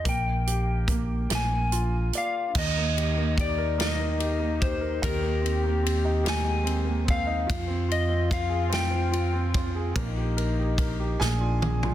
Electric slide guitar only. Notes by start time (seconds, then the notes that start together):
0.09 G5
1.35 G#5
2.18 F5
2.58 D#5
3.41 D5
3.81 D#5
4.62 C5
5.04 A#4
6.29 G#5
7.10 F5
7.92 D#5
8.33 F5
8.74 G5